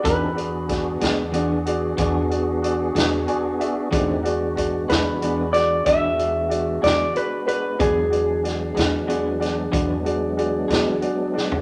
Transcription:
<<
  \new Staff \with { instrumentName = "Clean electric guitar" } { \time 12/8 \key e \mixolydian \tempo 4. = 62 b'2 r1 | r4. b'4 d''8 e''4. d''8 b'8 b'8 | gis'2 r1 | }
  \new Staff \with { instrumentName = "Upright piano" } { \time 12/8 \key e \mixolydian <fis' gis' d''>8 <fis' gis' d''>8 <fis' gis' d''>8 <fis' gis' d''>8 <fis' gis' d''>8 <fis' gis' d''>8 <fis' gis' d''>8 <fis' gis' d''>8 <fis' gis' d''>8 <fis' gis' d''>8 <fis' gis' d'' gis''>8 <fis' gis' d'' e''>8 | <fis' gis' d''>8 <fis' gis' d''>8 <fis' gis' d''>8 <fis' gis' d''>8 <fis' gis' d''>8 <fis' gis' d''>8 <fis' gis' d''>8 <fis' gis' d''>8 <fis' gis' d''>8 <fis' gis' d''>8 <fis' gis' d''>8 <fis' gis' d''>8 | <fis' gis' d''>8 <fis' gis' d''>8 <fis' gis' d''>8 <fis' gis' d''>8 <fis' gis' d''>8 <fis' gis' d''>8 <fis' gis' d''>8 <fis' gis' d''>8 <fis' gis' d''>8 <fis' gis' d''>8 <fis' gis' d''>8 <fis' gis' d''>8 | }
  \new Staff \with { instrumentName = "Clean electric guitar" } { \time 12/8 \key e \mixolydian <e b d' gis'>8 r4 <b d' gis'>8 <e b d' gis'>8 r8 <e b d' gis'>8 r4 <b d' gis'>8 r4 | <e b d' gis'>8 r4 <b d' gis'>8 <e b d' gis'>8 r8 <e b d' gis'>8 r4 <b d' gis'>8 r4 | <e b d' gis'>8 r4 <b d' gis'>8 <e b d' gis'>8 r8 <e b d' gis'>8 r4 <b d' gis'>8 r4 | }
  \new Staff \with { instrumentName = "Tonewheel organ" } { \time 12/8 \key e \mixolydian <c' dis' g' a'>8 <b d' fis' gis'>1~ <b d' fis' gis'>4. | <a c' dis' g'>8 <gis b d' fis'>1~ <gis b d' fis'>4. | <fis gis b d'>1. | }
  \new Staff \with { instrumentName = "Upright bass" } { \clef bass \time 12/8 \key e \mixolydian e,4. e,4. e,4. e,8 r4 | e,4. e,4. e,4. e,8 r4 | e,4. e,4. e,4. e,8 r4 | }
  \new DrumStaff \with { instrumentName = "Drums" } \drummode { \time 12/8 <hh bd>8 hh8 <hh bd sn>8 <hh sn>8 hh8 hh8 <hh bd>8 hh8 hh8 <hh sn>8 hh8 hh8 | <hh bd>8 hh8 <hh bd>8 <hh sn>8 hh8 <hh sn>8 <hh bd>8 hh8 hh8 <hh sn>8 hh8 hh8 | <hh bd>8 hh8 <hh sn>8 <hh sn>8 hh8 <hh sn>8 <hh bd>8 hh8 hh8 <hh sn>8 hh8 sn16 tomfh16 | }
>>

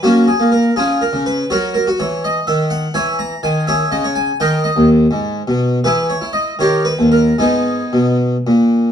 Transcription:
<<
  \new Staff \with { instrumentName = "Harpsichord" } { \time 6/8 \key fis \mixolydian \tempo 4. = 82 <ais cis' fis'>8 gis'8 ais'8 <cis' eis' gis'>8 ais'8 b'8 | <fis' ais' cis''>8 ais'16 fis'16 cis''8 dis''8 e''8 fis''8 | \key gis \minor <cis'' e'' gis''>8 ais''8 gis''8 <gis' cis'' e''>8 dis''16 cis''16 gis''8 | <ais' dis'' g''>8 dis''8 r2 |
<e' gis' b'>8 cis''8 dis''8 <g' ais' cis''>8 b'8 ais'8 | <b dis' gis'>4. r4. | }
  \new Staff \with { instrumentName = "Harpsichord" } { \clef bass \time 6/8 \key fis \mixolydian fis8. ais8. eis8. cis8. | fis4 e4 dis4 | \key gis \minor e4 dis4 cis4 | dis8. dis,8. gis,8. b,8. |
e8. e'8. dis8. dis,8. | gis,4 b,4 ais,4 | }
>>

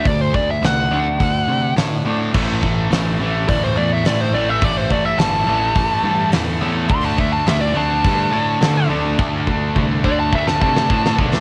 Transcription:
<<
  \new Staff \with { instrumentName = "Lead electric guitar" } { \time 4/4 \key d \mixolydian \tempo 4 = 105 d''16 c''16 d''16 e''16 fis''2 r4 | r2 d''16 c''16 d''16 e''16 d''16 c''16 d''16 e''16 | d''16 c''16 d''16 e''16 a''2 r4 | c'''16 a''16 e''16 a''16 e''16 d''16 a''2 r8 |
r4. d''16 a''16 e''16 a''16 a''4 r8 | }
  \new Staff \with { instrumentName = "Distorted electric guitar" } { \clef bass \time 4/4 \key d \mixolydian r1 | <a, e a>8 <a, e a>8 <a, e a>8 <a, e a>8 <a, e a>8 <a, e a>8 <a, e a>8 <a, e a>8 | <a, e a>8 <a, e a>8 <a, e a>8 <a, e a>8 <a, e a>8 <a, e a>8 <a, e a>8 <a, e a>8 | <d a d'>8 <d a d'>8 <d a d'>8 <d a d'>8 <d a d'>8 <d a d'>8 <d a d'>8 <d a d'>8 |
<d a d'>8 <d a d'>8 <d a d'>8 <d a d'>8 <d a d'>8 <d a d'>8 <d a d'>8 <d a d'>8 | }
  \new Staff \with { instrumentName = "Overdriven electric guitar" } { \clef bass \time 4/4 \key d \mixolydian <d a>8 <d a>8 <d a>8 <d a d'>8 <d a>8 <d a>8 <d a>8 <d a d'>8 | <a, e a>8 <a, e>8 <a, e>8 <a, e a>8 <a, e>8 <a, e>8 <a, e>8 <a, e a>8 | <a, e>8 <a, e>8 <a, e>8 <a, e a>8 <a, e>8 <a, e>8 <a, e>8 <a, e a>8 | <d a d'>8 <d a>8 <d a>8 <d a d'>8 <d a>8 <d a>8 <d a>8 <d a d'>8 |
<d a>8 <d a>8 <d a>8 <d a d'>8 <d a>8 <d a>8 <d a>8 <d a d'>8 | }
  \new Staff \with { instrumentName = "Overdriven electric guitar" } { \clef bass \time 4/4 \key d \mixolydian <d a>8 <d a>8 <d a>8 <d a d'>8 <d a>8 <d a>8 <d a>8 <d a d'>8 | <a, e a>8 <a, e>8 <a, e>8 <a, e a>8 <a, e>8 <a, e>8 <a, e>8 <a, e a>8 | <a, e>8 <a, e>8 <a, e>8 <a, e a>8 <a, e>8 <a, e>8 <a, e>8 <a, e a>8 | <d a d'>8 <d a>8 <d a>8 <d a d'>8 <d a>8 <d a>8 <d a>8 <d a d'>8 |
<d a>8 <d a>8 <d a>8 <d a d'>8 <d a>8 <d a>8 <d a>8 <d a d'>8 | }
  \new Staff \with { instrumentName = "Picked electric bass" } { \clef bass \time 4/4 \key d \mixolydian d,4 c,8 d,8 d,8 c8 a,8 a,8 | a,,4 a,,8 a,,8 d,8 e,8 a,8 a,,8 | a,,4 g,,8 a,,8 a,,8 g,8 e,8 e,8 | d,4 d,8 d,8 g,8 a,8 d8 d,8 |
d,4 c,8 d,8 d,8 c8 a,8 b,,8 | }
  \new DrumStaff \with { instrumentName = "Drums" } \drummode { \time 4/4 <hho bd>8 bd8 <hho sn>4 <hho bd>4 <hho sn>4 | <cymc bd>8 bd8 <hho sn>4 <hho bd>4 <hho sn>4 | <hho bd>8 bd8 <hho sn>4 <hho bd>4 <hho sn>4 | <hho bd>8 bd8 <hho sn>4 <hho bd>4 <hho sn>4 |
bd8 bd8 bd8 bd8 bd16 sn16 bd16 sn16 bd16 sn16 bd16 sn16 | }
>>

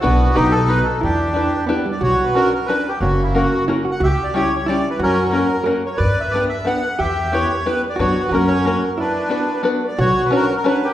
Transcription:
<<
  \new Staff \with { instrumentName = "Bandoneon" } { \time 3/4 \key e \minor \tempo 4 = 181 << { fis'4 g'8 a'8 b'8 a'8 | g'2 \tuplet 3/2 { r4 d''8 } | \key b \minor \tuplet 3/2 { cis''4 b'8 ais'4 ais'8 b'4 g'8 } | \tuplet 3/2 { fis'4 e'8 } fis'4 \tuplet 3/2 { r4 fis''8 } |
\tuplet 3/2 { e''4 d''8 cis''4 cis''8 d''4 b'8 } | \tuplet 3/2 { ais'4 fis'8 } ais'4 \tuplet 3/2 { r4 cis''8 } | \tuplet 3/2 { d''4 e''8 } d''8 e''8 fis''4 | e''4 cis''4 \tuplet 3/2 { b'8. r16 d''8 } |
\tuplet 3/2 { cis''4 b'8 } ais'8 cis''4 ais'8 | b'2 \tuplet 3/2 { r4 d''8 } | \tuplet 3/2 { cis''4 b'8 ais'4 ais'8 b'4 g'8 } | } \\ { b4 dis'4. r8 | d'2 r4 | fis'4. r4. | ais4. r4. |
g'4. r4. | cis'4. r4. | b'4. r4. | g'4. r4. |
fis'4 cis'4. r8 | d'2 r4 | fis'4. r4. | } >> }
  \new Staff \with { instrumentName = "Five-string banjo" } { \time 3/4 \key e \minor <b e' fis' b'>4 <b dis' fis' b'>8 r8 <b dis' fis' b'>8 r8 | r4 <d' e' g' b'>8 r8 <d' e' g' b'>8 r8 | \key b \minor r4 <cis' d' fis' b'>8 r8 <cis' d' fis' b'>8 r8 | r4 <ais cis' fis' ais'>8 r8 <ais cis' fis' ais'>8 r8 |
r4 <g cis' e' g'>8 r8 <g cis' e' g'>8 r8 | r4 <ais cis' fis' ais'>8 r8 <ais cis' fis' ais'>8 r8 | r4 <b d' g' b'>8 r8 <b d' g' b'>8 r8 | r4 <b e' g' b'>8 r8 <b e' g' b'>8 r8 |
<b d' fis' b'>4 <ais cis' fis' ais'>8 r8 <ais cis' fis' ais'>8 r8 | r4 <b d' fis' b'>8 r8 <b d' fis' b'>8 r8 | r4 <cis' d' fis' b' cis''>8 r8 <cis' d' fis' b' cis''>8 r8 | }
  \new Staff \with { instrumentName = "Hollow-body jazz guitar" } { \time 3/4 \key e \minor d'4 dis'2 | e'4 d'4 b8 g8 | \key b \minor fis'2. | cis'2 e'8 fis'8 |
g'2 e'4 | fis'2 ais'4 | b'2. | g'2. |
fis'4 fis'2 | e'4 d'4. r8 | fis'2. | }
  \new Staff \with { instrumentName = "Upright bass" } { \clef bass \time 3/4 \key e \minor b,,4 b,,2 | e,2 r4 | \key b \minor b,,8 r2 r8 | fis,,2 r4 |
cis,8 r2 r8 | fis,2 r4 | g,8 r2 r8 | e,2 r4 |
fis,8 r8 fis,2 | r2. | b,,8 r2 r8 | }
>>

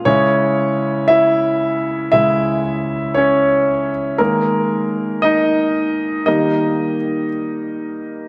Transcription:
<<
  \new Staff \with { instrumentName = "Grand piano" } { \time 4/4 \key des \lydian \tempo 4 = 58 <des' des''>4 <fes' fes''>4 fes''4 <des' des''>8. r16 | bes'4 <ees' ees''>4 <ees' ees''>4 r4 | }
  \new Staff \with { instrumentName = "Grand piano" } { \clef bass \time 4/4 \key des \lydian <des aes fes'>2 <des aes fes'>8 r4. | <ees aes bes>4. r8 <ees g bes>8 r4. | }
>>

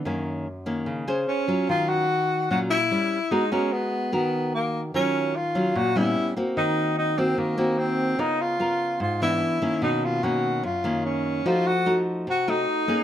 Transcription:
<<
  \new Staff \with { instrumentName = "Tenor saxophone" } { \time 4/4 \key ges \lydian \tempo 4 = 147 r2. des'4 | \key ees \minor f'8 ges'4. ges'8 fes'4. | ees'8 des'8 ces'4 ces'4 bes8. r16 | des'4 f'4 ges'8 fes'4 r8 |
ees'4 ees'8 c'8 bes4 c'4 | ees'8 f'4. f'8 fes'4. | dis'8 f'8 fis'4 f'4 cis'4 | f'8 ges'4 r8 ges'8 ees'4. | }
  \new Staff \with { instrumentName = "Nylon-string guitar" } { \time 4/4 \key ges \lydian << { <ees bes des'>4 r8 <ees bes des'>4 <des' aes' c''>4 <ges des' f'>8~ | \key ees \minor <ges des' f'>4 r4 <ges des' f'>8 r8 <g des' fes'>8 r8 | <ces' ges' bes'>8 <ces' ges' bes'>4. <ges' bes'>2 | <ges des' f'>4 r8 <ges des' f'>4 <g ces' des'>4 <bes c' fis'>8~ |
<bes c' fis'>4. <bes c' ges'>4 <bes c' ges'>4. | <ces' f' bes'>4 <ces' f' bes'>4 r8 <fes ces' d'>4 <ees bes des'>8~ | <ees bes des'>4 <dis ais cis'>4 r8 <dis ais cis'>4. | <a ees' ges'>8 r8 <a ees' ges'>4 r8 <a ees' ges'>4 <bes cis' gis'>8 | } \\ { ges,2 des4 r4 | ees2 bes,4 r4 | aes2 ees2 | ees2 bes,4 r4 |
ees2 ees2 | des2 aes,4 r4 | b,2 fis,2 | f2 c4 r4 | } >> }
>>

